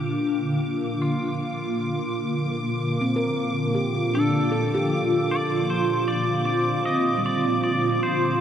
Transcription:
0.00 8.41 A#2 medium
0.00 8.41 D3 medium
0.00 8.41 F3 medium
0.00 0.88 G3 soft
0.00 5.38 A#3 medium
0.00 8.41 F4 medium
0.00 0.59 G4 medium
0.00 8.41 D6 medium
1.02 2.15 F4 medium
3.01 4.33 C4 medium
3.16 3.90 A#4 soft
3.75 4.68 G4 soft
4.15 4.91 D4 medium
4.15 4.88 A4 medium
4.52 8.41 A4 medium
4.75 8.41 G4 medium
5.16 8.41 C4 medium
5.31 5.70 D5 medium
5.70 6.06 C5 medium
6.08 6.44 D5 medium
6.45 6.85 D5 medium
6.85 7.25 D#5 loud
7.17 8.41 G3 medium
7.26 7.62 D5 medium
7.64 8.03 D5 medium
8.03 8.41 C5 medium

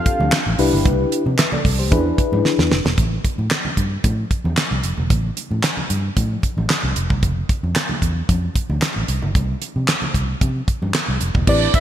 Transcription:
0.00 0.39 C4 medium
0.00 0.39 D4 medium
0.00 0.39 G4 medium
0.00 0.39 A4 medium
0.00 0.59 F5 medium
0.06 kick medium
0.06 closed hi-hat medium
0.20 0.29 D2 medium
0.20 high conga medium
0.32 snare loud
0.32 clap medium
0.32 closed hi-hat medium
0.46 0.55 A1 loud
0.46 high conga medium
0.59 0.69 C2 loud
0.59 1.23 D4 loud
0.59 1.23 E4 medium
0.59 1.23 G4 loud
0.59 1.23 B4 loud
0.59 open hi-hat medium
0.59 muted conga soft
0.73 0.82 G1 medium
0.73 low conga medium
0.85 1.04 C2 loud
0.85 kick loud
0.85 closed hi-hat medium
0.85 low conga medium
1.12 closed hi-hat medium
1.26 1.35 C3 loud
1.26 high conga medium
1.38 1.52 B4 medium
1.38 1.52 E5 medium
1.38 snare loud
1.38 clap medium
1.38 closed hi-hat loud
1.52 1.78 A4 medium
1.52 1.78 D5 medium
1.52 high conga medium
1.52 low conga medium
1.65 1.92 C2 medium
1.65 kick medium
1.65 open hi-hat medium
1.65 muted conga soft
1.79 2.05 G4 medium
1.79 2.04 C5 medium
1.79 high conga medium
1.91 2.11 E2 loud
1.91 2.77 D4 loud
1.91 2.77 E4 medium
1.91 2.77 G#4 medium
1.91 2.77 B4 loud
1.91 kick loud
1.91 closed hi-hat medium
1.91 muted conga soft
1.91 high conga medium
2.18 kick medium
2.18 closed hi-hat medium
2.32 2.41 G#2 medium
2.32 high conga medium
2.45 snare medium
2.45 muted conga soft
2.59 2.67 E2 medium
2.59 snare medium
2.59 high conga medium
2.71 2.81 F1 medium
2.71 snare loud
2.71 muted conga soft
2.85 2.94 E1 medium
2.85 snare loud
2.85 low conga medium
2.98 3.17 A1 loud
2.98 kick loud
2.98 closed hi-hat medium
2.98 muted conga soft
2.98 low conga medium
3.24 kick medium
3.24 closed hi-hat medium
3.24 muted conga soft
3.38 3.47 A2 medium
3.38 high conga medium
3.51 snare loud
3.51 clap medium
3.51 closed hi-hat medium
3.51 muted conga soft
3.65 high conga medium
3.65 low conga medium
3.77 3.96 G2 medium
3.77 kick medium
3.77 closed hi-hat medium
3.77 muted conga soft
4.04 4.23 A2 medium
4.04 kick loud
4.04 closed hi-hat medium
4.04 high conga medium
4.31 kick medium
4.31 closed hi-hat medium
4.44 4.53 E2 medium
4.44 high conga medium
4.57 snare loud
4.57 clap medium
4.57 closed hi-hat medium
4.57 muted conga soft
4.71 4.80 C2 medium
4.71 high conga medium
4.83 4.93 F1 medium
4.83 closed hi-hat medium
4.97 5.06 E1 medium
4.97 low conga medium
5.10 5.29 A1 loud
5.10 kick loud
5.10 closed hi-hat medium
5.10 muted conga soft
5.10 low conga medium
5.37 closed hi-hat medium
5.37 muted conga soft
5.51 5.60 A2 medium
5.51 high conga medium
5.63 snare loud
5.63 clap medium
5.63 closed hi-hat loud
5.77 high conga medium
5.77 low conga medium
5.90 6.09 G2 medium
5.90 closed hi-hat medium
6.17 6.35 A2 loud
6.17 kick loud
6.17 closed hi-hat medium
6.17 muted conga soft
6.17 high conga medium
6.42 kick medium
6.42 closed hi-hat medium
6.42 muted conga soft
6.57 6.66 A1 medium
6.57 high conga medium
6.70 snare loud
6.70 clap medium
6.70 closed hi-hat medium
6.70 muted conga soft
6.83 6.92 C2 medium
6.83 high conga medium
6.96 7.06 F1 loud
6.96 closed hi-hat medium
6.96 muted conga soft
7.10 7.19 C2 medium
7.10 kick medium
7.10 low conga medium
7.23 7.41 F1 loud
7.23 kick loud
7.23 closed hi-hat medium
7.23 low conga medium
7.49 kick loud
7.49 closed hi-hat medium
7.49 muted conga soft
7.63 7.72 F2 medium
7.63 high conga medium
7.75 snare loud
7.75 clap medium
7.75 closed hi-hat loud
7.89 high conga medium
7.89 low conga medium
8.02 8.21 E2 medium
8.02 kick medium
8.02 closed hi-hat medium
8.02 muted conga soft
8.29 8.48 F2 medium
8.29 kick loud
8.29 closed hi-hat medium
8.29 muted conga soft
8.29 high conga medium
8.54 kick medium
8.54 closed hi-hat medium
8.54 muted conga soft
8.70 8.78 D2 medium
8.70 high conga medium
8.82 snare loud
8.82 clap medium
8.82 closed hi-hat medium
8.82 muted conga soft
8.96 9.05 A1 medium
8.96 high conga medium
9.08 9.18 C2 medium
9.08 closed hi-hat medium
9.08 muted conga soft
9.22 9.31 G1 medium
9.22 low conga medium
9.35 9.54 C2 medium
9.35 kick loud
9.35 closed hi-hat medium
9.35 muted conga soft
9.35 low conga medium
9.62 closed hi-hat medium
9.62 muted conga soft
9.76 9.85 C3 medium
9.76 high conga medium
9.88 snare loud
9.88 clap medium
9.88 closed hi-hat loud
9.88 muted conga soft
10.02 high conga medium
10.02 low conga medium
10.14 10.33 C2 medium
10.14 kick medium
10.14 closed hi-hat medium
10.41 10.60 C3 loud
10.41 kick loud
10.41 closed hi-hat medium
10.41 muted conga soft
10.41 high conga medium
10.68 kick medium
10.68 closed hi-hat medium
10.82 10.91 G2 medium
10.82 high conga medium
10.94 snare loud
10.94 clap medium
10.94 closed hi-hat medium
11.08 11.17 C2 medium
11.08 high conga medium
11.21 11.31 F1 medium
11.21 closed hi-hat medium
11.21 muted conga soft
11.34 11.44 E1 medium
11.34 kick medium
11.34 low conga medium
11.47 11.66 A1 loud
11.47 11.80 C4 medium
11.47 11.80 E4 medium
11.47 11.80 G4 medium
11.47 11.80 B4 medium
11.47 11.73 D5 medium
11.47 kick loud
11.47 crash loud
11.74 11.80 E5 medium
11.74 kick loud
11.74 closed hi-hat medium

